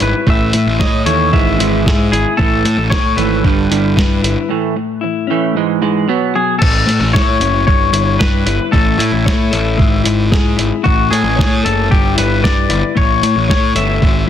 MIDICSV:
0, 0, Header, 1, 6, 480
1, 0, Start_track
1, 0, Tempo, 528634
1, 238, Time_signature, 4, 2, 24, 8
1, 12981, End_track
2, 0, Start_track
2, 0, Title_t, "Clean electric guitar"
2, 0, Program_c, 0, 27
2, 22, Note_on_c, 0, 71, 77
2, 234, Note_off_c, 0, 71, 0
2, 272, Note_on_c, 0, 76, 94
2, 725, Note_off_c, 0, 76, 0
2, 729, Note_on_c, 0, 75, 86
2, 959, Note_off_c, 0, 75, 0
2, 962, Note_on_c, 0, 73, 79
2, 1204, Note_off_c, 0, 73, 0
2, 1207, Note_on_c, 0, 76, 95
2, 1920, Note_off_c, 0, 76, 0
2, 1924, Note_on_c, 0, 68, 73
2, 2151, Note_off_c, 0, 68, 0
2, 2154, Note_on_c, 0, 69, 85
2, 2631, Note_off_c, 0, 69, 0
2, 2635, Note_on_c, 0, 73, 85
2, 2872, Note_off_c, 0, 73, 0
2, 2876, Note_on_c, 0, 71, 74
2, 5485, Note_off_c, 0, 71, 0
2, 5770, Note_on_c, 0, 68, 81
2, 5977, Note_off_c, 0, 68, 0
2, 5981, Note_on_c, 0, 69, 96
2, 6438, Note_off_c, 0, 69, 0
2, 6476, Note_on_c, 0, 73, 90
2, 6952, Note_off_c, 0, 73, 0
2, 6963, Note_on_c, 0, 73, 94
2, 7409, Note_off_c, 0, 73, 0
2, 7439, Note_on_c, 0, 71, 90
2, 7914, Note_off_c, 0, 71, 0
2, 7918, Note_on_c, 0, 69, 92
2, 8160, Note_on_c, 0, 64, 76
2, 8168, Note_off_c, 0, 69, 0
2, 9085, Note_off_c, 0, 64, 0
2, 9842, Note_on_c, 0, 66, 83
2, 10081, Note_off_c, 0, 66, 0
2, 10084, Note_on_c, 0, 68, 84
2, 10573, Note_off_c, 0, 68, 0
2, 10577, Note_on_c, 0, 69, 73
2, 10811, Note_off_c, 0, 69, 0
2, 10815, Note_on_c, 0, 67, 83
2, 11031, Note_off_c, 0, 67, 0
2, 11065, Note_on_c, 0, 71, 80
2, 11289, Note_off_c, 0, 71, 0
2, 11293, Note_on_c, 0, 74, 98
2, 11775, Note_off_c, 0, 74, 0
2, 11778, Note_on_c, 0, 73, 104
2, 12250, Note_off_c, 0, 73, 0
2, 12261, Note_on_c, 0, 73, 93
2, 12491, Note_off_c, 0, 73, 0
2, 12494, Note_on_c, 0, 76, 89
2, 12932, Note_off_c, 0, 76, 0
2, 12981, End_track
3, 0, Start_track
3, 0, Title_t, "Overdriven electric guitar"
3, 0, Program_c, 1, 29
3, 0, Note_on_c, 1, 55, 57
3, 0, Note_on_c, 1, 64, 60
3, 0, Note_on_c, 1, 71, 58
3, 242, Note_off_c, 1, 55, 0
3, 242, Note_off_c, 1, 71, 0
3, 250, Note_on_c, 1, 57, 64
3, 720, Note_on_c, 1, 73, 70
3, 959, Note_on_c, 1, 69, 59
3, 1198, Note_off_c, 1, 57, 0
3, 1199, Note_off_c, 1, 69, 0
3, 1199, Note_off_c, 1, 73, 0
3, 1202, Note_on_c, 1, 56, 62
3, 1438, Note_off_c, 1, 64, 0
3, 1442, Note_on_c, 1, 64, 62
3, 1677, Note_on_c, 1, 68, 59
3, 1921, Note_off_c, 1, 64, 0
3, 1925, Note_on_c, 1, 64, 59
3, 2154, Note_off_c, 1, 56, 0
3, 2157, Note_on_c, 1, 57, 73
3, 2159, Note_off_c, 1, 68, 0
3, 2643, Note_on_c, 1, 73, 72
3, 2873, Note_on_c, 1, 69, 58
3, 3117, Note_off_c, 1, 69, 0
3, 3120, Note_off_c, 1, 57, 0
3, 3122, Note_off_c, 1, 73, 0
3, 3123, Note_on_c, 1, 55, 55
3, 3363, Note_off_c, 1, 64, 0
3, 3367, Note_on_c, 1, 64, 66
3, 3599, Note_on_c, 1, 71, 61
3, 3823, Note_off_c, 1, 64, 0
3, 3834, Note_on_c, 1, 64, 60
3, 4073, Note_on_c, 1, 45, 66
3, 4078, Note_off_c, 1, 64, 0
3, 4081, Note_off_c, 1, 71, 0
3, 4083, Note_off_c, 1, 55, 0
3, 4550, Note_on_c, 1, 64, 70
3, 4787, Note_on_c, 1, 61, 56
3, 5027, Note_off_c, 1, 45, 0
3, 5030, Note_on_c, 1, 44, 55
3, 5035, Note_off_c, 1, 61, 0
3, 5036, Note_off_c, 1, 64, 0
3, 5287, Note_on_c, 1, 56, 58
3, 5517, Note_off_c, 1, 44, 0
3, 5525, Note_off_c, 1, 56, 0
3, 5526, Note_on_c, 1, 47, 56
3, 5766, Note_on_c, 1, 54, 58
3, 6000, Note_on_c, 1, 45, 62
3, 6005, Note_off_c, 1, 47, 0
3, 6005, Note_off_c, 1, 54, 0
3, 6479, Note_on_c, 1, 64, 77
3, 6717, Note_on_c, 1, 61, 62
3, 6960, Note_off_c, 1, 61, 0
3, 6962, Note_off_c, 1, 45, 0
3, 6962, Note_on_c, 1, 55, 57
3, 7195, Note_off_c, 1, 64, 0
3, 7195, Note_on_c, 1, 64, 60
3, 7446, Note_on_c, 1, 71, 60
3, 7680, Note_off_c, 1, 64, 0
3, 7684, Note_on_c, 1, 64, 61
3, 7913, Note_off_c, 1, 55, 0
3, 7917, Note_on_c, 1, 57, 72
3, 7924, Note_off_c, 1, 71, 0
3, 8403, Note_on_c, 1, 73, 74
3, 8634, Note_on_c, 1, 69, 55
3, 8869, Note_off_c, 1, 57, 0
3, 8873, Note_on_c, 1, 56, 68
3, 8878, Note_off_c, 1, 69, 0
3, 8883, Note_off_c, 1, 73, 0
3, 9112, Note_off_c, 1, 64, 0
3, 9116, Note_on_c, 1, 64, 59
3, 9366, Note_on_c, 1, 68, 58
3, 9589, Note_off_c, 1, 64, 0
3, 9593, Note_on_c, 1, 64, 59
3, 9832, Note_off_c, 1, 56, 0
3, 9835, Note_on_c, 1, 57, 70
3, 9844, Note_off_c, 1, 68, 0
3, 10315, Note_on_c, 1, 73, 73
3, 10562, Note_on_c, 1, 69, 62
3, 10797, Note_off_c, 1, 57, 0
3, 10798, Note_off_c, 1, 73, 0
3, 10801, Note_off_c, 1, 69, 0
3, 10802, Note_on_c, 1, 55, 61
3, 11029, Note_off_c, 1, 64, 0
3, 11032, Note_on_c, 1, 64, 64
3, 11284, Note_on_c, 1, 71, 62
3, 11518, Note_off_c, 1, 64, 0
3, 11522, Note_on_c, 1, 64, 62
3, 11756, Note_off_c, 1, 55, 0
3, 11759, Note_on_c, 1, 57, 74
3, 11761, Note_off_c, 1, 71, 0
3, 12243, Note_on_c, 1, 73, 75
3, 12486, Note_on_c, 1, 69, 58
3, 12717, Note_off_c, 1, 57, 0
3, 12720, Note_off_c, 1, 73, 0
3, 12721, Note_off_c, 1, 69, 0
3, 12723, Note_on_c, 1, 56, 58
3, 12956, Note_off_c, 1, 64, 0
3, 12981, Note_off_c, 1, 56, 0
3, 12981, End_track
4, 0, Start_track
4, 0, Title_t, "Overdriven electric guitar"
4, 0, Program_c, 2, 29
4, 12, Note_on_c, 2, 43, 49
4, 15, Note_on_c, 2, 50, 59
4, 221, Note_off_c, 2, 43, 0
4, 222, Note_off_c, 2, 50, 0
4, 241, Note_on_c, 2, 45, 69
4, 242, Note_on_c, 2, 52, 61
4, 247, Note_on_c, 2, 57, 75
4, 465, Note_off_c, 2, 45, 0
4, 465, Note_off_c, 2, 52, 0
4, 468, Note_off_c, 2, 57, 0
4, 485, Note_on_c, 2, 45, 52
4, 491, Note_on_c, 2, 52, 63
4, 697, Note_off_c, 2, 45, 0
4, 701, Note_off_c, 2, 52, 0
4, 726, Note_on_c, 2, 45, 59
4, 729, Note_on_c, 2, 52, 75
4, 938, Note_off_c, 2, 45, 0
4, 940, Note_off_c, 2, 52, 0
4, 964, Note_on_c, 2, 45, 79
4, 965, Note_on_c, 2, 52, 73
4, 971, Note_on_c, 2, 57, 82
4, 1187, Note_off_c, 2, 45, 0
4, 1187, Note_off_c, 2, 52, 0
4, 1190, Note_off_c, 2, 57, 0
4, 1196, Note_on_c, 2, 44, 78
4, 1202, Note_on_c, 2, 52, 93
4, 1207, Note_on_c, 2, 56, 91
4, 1423, Note_off_c, 2, 44, 0
4, 1426, Note_off_c, 2, 52, 0
4, 1428, Note_off_c, 2, 56, 0
4, 1441, Note_on_c, 2, 44, 79
4, 1450, Note_on_c, 2, 52, 83
4, 1455, Note_on_c, 2, 56, 81
4, 1666, Note_off_c, 2, 44, 0
4, 1670, Note_off_c, 2, 52, 0
4, 1672, Note_off_c, 2, 56, 0
4, 1687, Note_on_c, 2, 44, 61
4, 1689, Note_on_c, 2, 52, 61
4, 1899, Note_off_c, 2, 44, 0
4, 1900, Note_off_c, 2, 52, 0
4, 1929, Note_on_c, 2, 44, 50
4, 1930, Note_on_c, 2, 52, 64
4, 2140, Note_off_c, 2, 44, 0
4, 2141, Note_off_c, 2, 52, 0
4, 2162, Note_on_c, 2, 45, 70
4, 2172, Note_on_c, 2, 52, 79
4, 2177, Note_on_c, 2, 57, 71
4, 2386, Note_off_c, 2, 45, 0
4, 2391, Note_off_c, 2, 52, 0
4, 2394, Note_off_c, 2, 57, 0
4, 2401, Note_on_c, 2, 45, 55
4, 2407, Note_on_c, 2, 52, 62
4, 2617, Note_off_c, 2, 45, 0
4, 2620, Note_off_c, 2, 52, 0
4, 2645, Note_on_c, 2, 45, 67
4, 2650, Note_on_c, 2, 52, 65
4, 2859, Note_off_c, 2, 45, 0
4, 2861, Note_off_c, 2, 52, 0
4, 2884, Note_on_c, 2, 45, 73
4, 2889, Note_on_c, 2, 52, 80
4, 2896, Note_on_c, 2, 57, 75
4, 3108, Note_off_c, 2, 45, 0
4, 3111, Note_off_c, 2, 52, 0
4, 3114, Note_off_c, 2, 57, 0
4, 3126, Note_on_c, 2, 43, 92
4, 3134, Note_on_c, 2, 55, 85
4, 3135, Note_on_c, 2, 50, 82
4, 3349, Note_off_c, 2, 43, 0
4, 3353, Note_off_c, 2, 55, 0
4, 3354, Note_off_c, 2, 50, 0
4, 3366, Note_on_c, 2, 43, 84
4, 3378, Note_on_c, 2, 50, 91
4, 3383, Note_on_c, 2, 55, 98
4, 3589, Note_off_c, 2, 43, 0
4, 3595, Note_off_c, 2, 50, 0
4, 3598, Note_off_c, 2, 55, 0
4, 3601, Note_on_c, 2, 43, 66
4, 3606, Note_on_c, 2, 50, 80
4, 3818, Note_off_c, 2, 43, 0
4, 3820, Note_off_c, 2, 50, 0
4, 3845, Note_on_c, 2, 43, 53
4, 3854, Note_on_c, 2, 50, 60
4, 4060, Note_off_c, 2, 43, 0
4, 4064, Note_off_c, 2, 50, 0
4, 4083, Note_on_c, 2, 45, 72
4, 4090, Note_on_c, 2, 52, 66
4, 4094, Note_on_c, 2, 57, 64
4, 4308, Note_off_c, 2, 45, 0
4, 4312, Note_off_c, 2, 52, 0
4, 4314, Note_off_c, 2, 57, 0
4, 4325, Note_on_c, 2, 45, 55
4, 4329, Note_on_c, 2, 52, 61
4, 4540, Note_off_c, 2, 45, 0
4, 4542, Note_off_c, 2, 52, 0
4, 4570, Note_on_c, 2, 45, 67
4, 4577, Note_on_c, 2, 52, 68
4, 4782, Note_off_c, 2, 45, 0
4, 4786, Note_off_c, 2, 52, 0
4, 4813, Note_on_c, 2, 45, 83
4, 4819, Note_on_c, 2, 52, 76
4, 4820, Note_on_c, 2, 57, 78
4, 5034, Note_off_c, 2, 45, 0
4, 5037, Note_off_c, 2, 52, 0
4, 5037, Note_off_c, 2, 57, 0
4, 5051, Note_on_c, 2, 44, 74
4, 5055, Note_on_c, 2, 52, 79
4, 5058, Note_on_c, 2, 56, 94
4, 5269, Note_off_c, 2, 44, 0
4, 5273, Note_off_c, 2, 52, 0
4, 5276, Note_off_c, 2, 56, 0
4, 5280, Note_on_c, 2, 44, 72
4, 5284, Note_on_c, 2, 52, 83
4, 5287, Note_on_c, 2, 56, 79
4, 5507, Note_off_c, 2, 44, 0
4, 5509, Note_off_c, 2, 52, 0
4, 5511, Note_off_c, 2, 56, 0
4, 5518, Note_on_c, 2, 47, 75
4, 5529, Note_on_c, 2, 54, 91
4, 5531, Note_on_c, 2, 59, 92
4, 5746, Note_off_c, 2, 47, 0
4, 5752, Note_off_c, 2, 54, 0
4, 5753, Note_off_c, 2, 59, 0
4, 5770, Note_on_c, 2, 47, 59
4, 5777, Note_on_c, 2, 54, 54
4, 5983, Note_off_c, 2, 47, 0
4, 5986, Note_off_c, 2, 54, 0
4, 12981, End_track
5, 0, Start_track
5, 0, Title_t, "Picked electric bass"
5, 0, Program_c, 3, 34
5, 4, Note_on_c, 3, 32, 64
5, 112, Note_off_c, 3, 32, 0
5, 243, Note_on_c, 3, 33, 76
5, 463, Note_off_c, 3, 33, 0
5, 489, Note_on_c, 3, 45, 86
5, 595, Note_off_c, 3, 45, 0
5, 603, Note_on_c, 3, 33, 72
5, 728, Note_on_c, 3, 45, 81
5, 741, Note_off_c, 3, 33, 0
5, 946, Note_off_c, 3, 45, 0
5, 963, Note_on_c, 3, 39, 86
5, 1183, Note_off_c, 3, 39, 0
5, 1205, Note_on_c, 3, 32, 85
5, 1424, Note_off_c, 3, 32, 0
5, 1446, Note_on_c, 3, 32, 75
5, 1665, Note_off_c, 3, 32, 0
5, 1692, Note_on_c, 3, 44, 71
5, 1908, Note_off_c, 3, 44, 0
5, 1925, Note_on_c, 3, 32, 71
5, 2034, Note_off_c, 3, 32, 0
5, 2175, Note_on_c, 3, 33, 77
5, 2390, Note_off_c, 3, 33, 0
5, 2401, Note_on_c, 3, 45, 91
5, 2511, Note_off_c, 3, 45, 0
5, 2519, Note_on_c, 3, 33, 73
5, 2649, Note_on_c, 3, 45, 90
5, 2663, Note_off_c, 3, 33, 0
5, 2867, Note_off_c, 3, 45, 0
5, 2876, Note_on_c, 3, 32, 87
5, 3100, Note_off_c, 3, 32, 0
5, 3129, Note_on_c, 3, 31, 89
5, 3348, Note_off_c, 3, 31, 0
5, 3357, Note_on_c, 3, 31, 70
5, 3581, Note_off_c, 3, 31, 0
5, 3605, Note_on_c, 3, 43, 70
5, 3826, Note_off_c, 3, 43, 0
5, 3834, Note_on_c, 3, 31, 72
5, 3949, Note_off_c, 3, 31, 0
5, 6008, Note_on_c, 3, 33, 84
5, 6228, Note_off_c, 3, 33, 0
5, 6234, Note_on_c, 3, 45, 88
5, 6349, Note_off_c, 3, 45, 0
5, 6354, Note_on_c, 3, 33, 79
5, 6494, Note_on_c, 3, 45, 81
5, 6508, Note_off_c, 3, 33, 0
5, 6711, Note_off_c, 3, 45, 0
5, 6715, Note_on_c, 3, 30, 91
5, 6941, Note_off_c, 3, 30, 0
5, 6969, Note_on_c, 3, 31, 86
5, 7185, Note_off_c, 3, 31, 0
5, 7191, Note_on_c, 3, 31, 77
5, 7419, Note_off_c, 3, 31, 0
5, 7448, Note_on_c, 3, 43, 80
5, 7668, Note_off_c, 3, 43, 0
5, 7677, Note_on_c, 3, 31, 75
5, 7791, Note_off_c, 3, 31, 0
5, 7928, Note_on_c, 3, 33, 82
5, 8148, Note_off_c, 3, 33, 0
5, 8154, Note_on_c, 3, 45, 88
5, 8269, Note_off_c, 3, 45, 0
5, 8282, Note_on_c, 3, 33, 76
5, 8415, Note_on_c, 3, 45, 86
5, 8428, Note_off_c, 3, 33, 0
5, 8631, Note_off_c, 3, 45, 0
5, 8651, Note_on_c, 3, 33, 85
5, 8869, Note_off_c, 3, 33, 0
5, 8893, Note_on_c, 3, 32, 82
5, 9110, Note_off_c, 3, 32, 0
5, 9128, Note_on_c, 3, 32, 81
5, 9348, Note_off_c, 3, 32, 0
5, 9369, Note_on_c, 3, 44, 82
5, 9588, Note_off_c, 3, 44, 0
5, 9611, Note_on_c, 3, 32, 71
5, 9718, Note_off_c, 3, 32, 0
5, 9856, Note_on_c, 3, 33, 82
5, 10071, Note_off_c, 3, 33, 0
5, 10090, Note_on_c, 3, 45, 95
5, 10195, Note_off_c, 3, 45, 0
5, 10200, Note_on_c, 3, 33, 85
5, 10342, Note_on_c, 3, 45, 84
5, 10356, Note_off_c, 3, 33, 0
5, 10554, Note_off_c, 3, 45, 0
5, 10581, Note_on_c, 3, 30, 87
5, 10794, Note_off_c, 3, 30, 0
5, 10820, Note_on_c, 3, 31, 93
5, 11033, Note_off_c, 3, 31, 0
5, 11063, Note_on_c, 3, 31, 84
5, 11274, Note_off_c, 3, 31, 0
5, 11298, Note_on_c, 3, 43, 72
5, 11512, Note_off_c, 3, 43, 0
5, 11535, Note_on_c, 3, 31, 76
5, 11638, Note_off_c, 3, 31, 0
5, 11773, Note_on_c, 3, 33, 82
5, 11989, Note_off_c, 3, 33, 0
5, 12010, Note_on_c, 3, 45, 99
5, 12115, Note_off_c, 3, 45, 0
5, 12131, Note_on_c, 3, 33, 83
5, 12255, Note_on_c, 3, 45, 82
5, 12269, Note_off_c, 3, 33, 0
5, 12469, Note_off_c, 3, 45, 0
5, 12483, Note_on_c, 3, 31, 95
5, 12702, Note_off_c, 3, 31, 0
5, 12731, Note_on_c, 3, 32, 91
5, 12946, Note_off_c, 3, 32, 0
5, 12981, End_track
6, 0, Start_track
6, 0, Title_t, "Drums"
6, 2, Note_on_c, 9, 42, 68
6, 93, Note_off_c, 9, 42, 0
6, 242, Note_on_c, 9, 36, 99
6, 333, Note_off_c, 9, 36, 0
6, 483, Note_on_c, 9, 42, 74
6, 574, Note_off_c, 9, 42, 0
6, 725, Note_on_c, 9, 36, 96
6, 734, Note_on_c, 9, 38, 93
6, 816, Note_off_c, 9, 36, 0
6, 824, Note_off_c, 9, 38, 0
6, 966, Note_on_c, 9, 42, 72
6, 1057, Note_off_c, 9, 42, 0
6, 1207, Note_on_c, 9, 36, 88
6, 1298, Note_off_c, 9, 36, 0
6, 1456, Note_on_c, 9, 42, 68
6, 1546, Note_off_c, 9, 42, 0
6, 1690, Note_on_c, 9, 36, 87
6, 1705, Note_on_c, 9, 38, 96
6, 1781, Note_off_c, 9, 36, 0
6, 1796, Note_off_c, 9, 38, 0
6, 1938, Note_on_c, 9, 42, 68
6, 2029, Note_off_c, 9, 42, 0
6, 2171, Note_on_c, 9, 36, 98
6, 2262, Note_off_c, 9, 36, 0
6, 2410, Note_on_c, 9, 42, 69
6, 2501, Note_off_c, 9, 42, 0
6, 2646, Note_on_c, 9, 36, 99
6, 2655, Note_on_c, 9, 38, 102
6, 2737, Note_off_c, 9, 36, 0
6, 2746, Note_off_c, 9, 38, 0
6, 2887, Note_on_c, 9, 42, 67
6, 2978, Note_off_c, 9, 42, 0
6, 3126, Note_on_c, 9, 36, 102
6, 3217, Note_off_c, 9, 36, 0
6, 3374, Note_on_c, 9, 42, 66
6, 3465, Note_off_c, 9, 42, 0
6, 3604, Note_on_c, 9, 36, 97
6, 3619, Note_on_c, 9, 38, 99
6, 3695, Note_off_c, 9, 36, 0
6, 3710, Note_off_c, 9, 38, 0
6, 3853, Note_on_c, 9, 42, 68
6, 3943, Note_off_c, 9, 42, 0
6, 6009, Note_on_c, 9, 36, 102
6, 6009, Note_on_c, 9, 49, 87
6, 6100, Note_off_c, 9, 36, 0
6, 6100, Note_off_c, 9, 49, 0
6, 6254, Note_on_c, 9, 42, 70
6, 6344, Note_off_c, 9, 42, 0
6, 6490, Note_on_c, 9, 36, 100
6, 6502, Note_on_c, 9, 38, 101
6, 6581, Note_off_c, 9, 36, 0
6, 6593, Note_off_c, 9, 38, 0
6, 6729, Note_on_c, 9, 42, 61
6, 6819, Note_off_c, 9, 42, 0
6, 6969, Note_on_c, 9, 36, 107
6, 7060, Note_off_c, 9, 36, 0
6, 7206, Note_on_c, 9, 42, 81
6, 7297, Note_off_c, 9, 42, 0
6, 7447, Note_on_c, 9, 36, 96
6, 7452, Note_on_c, 9, 38, 101
6, 7538, Note_off_c, 9, 36, 0
6, 7543, Note_off_c, 9, 38, 0
6, 7688, Note_on_c, 9, 42, 71
6, 7778, Note_off_c, 9, 42, 0
6, 7928, Note_on_c, 9, 36, 99
6, 8019, Note_off_c, 9, 36, 0
6, 8174, Note_on_c, 9, 42, 74
6, 8265, Note_off_c, 9, 42, 0
6, 8411, Note_on_c, 9, 36, 103
6, 8426, Note_on_c, 9, 38, 103
6, 8502, Note_off_c, 9, 36, 0
6, 8517, Note_off_c, 9, 38, 0
6, 8652, Note_on_c, 9, 42, 67
6, 8743, Note_off_c, 9, 42, 0
6, 8891, Note_on_c, 9, 36, 102
6, 8982, Note_off_c, 9, 36, 0
6, 9130, Note_on_c, 9, 42, 83
6, 9221, Note_off_c, 9, 42, 0
6, 9372, Note_on_c, 9, 36, 107
6, 9384, Note_on_c, 9, 38, 99
6, 9463, Note_off_c, 9, 36, 0
6, 9475, Note_off_c, 9, 38, 0
6, 9614, Note_on_c, 9, 42, 70
6, 9705, Note_off_c, 9, 42, 0
6, 9856, Note_on_c, 9, 36, 102
6, 9947, Note_off_c, 9, 36, 0
6, 10105, Note_on_c, 9, 42, 79
6, 10195, Note_off_c, 9, 42, 0
6, 10341, Note_on_c, 9, 36, 111
6, 10362, Note_on_c, 9, 38, 100
6, 10431, Note_off_c, 9, 36, 0
6, 10453, Note_off_c, 9, 38, 0
6, 10586, Note_on_c, 9, 42, 64
6, 10677, Note_off_c, 9, 42, 0
6, 10820, Note_on_c, 9, 36, 107
6, 10911, Note_off_c, 9, 36, 0
6, 11058, Note_on_c, 9, 42, 76
6, 11149, Note_off_c, 9, 42, 0
6, 11296, Note_on_c, 9, 36, 98
6, 11306, Note_on_c, 9, 38, 103
6, 11387, Note_off_c, 9, 36, 0
6, 11397, Note_off_c, 9, 38, 0
6, 11530, Note_on_c, 9, 42, 75
6, 11621, Note_off_c, 9, 42, 0
6, 11774, Note_on_c, 9, 36, 109
6, 11865, Note_off_c, 9, 36, 0
6, 12015, Note_on_c, 9, 42, 80
6, 12106, Note_off_c, 9, 42, 0
6, 12254, Note_on_c, 9, 36, 104
6, 12268, Note_on_c, 9, 38, 92
6, 12345, Note_off_c, 9, 36, 0
6, 12359, Note_off_c, 9, 38, 0
6, 12492, Note_on_c, 9, 42, 73
6, 12583, Note_off_c, 9, 42, 0
6, 12731, Note_on_c, 9, 36, 98
6, 12822, Note_off_c, 9, 36, 0
6, 12981, End_track
0, 0, End_of_file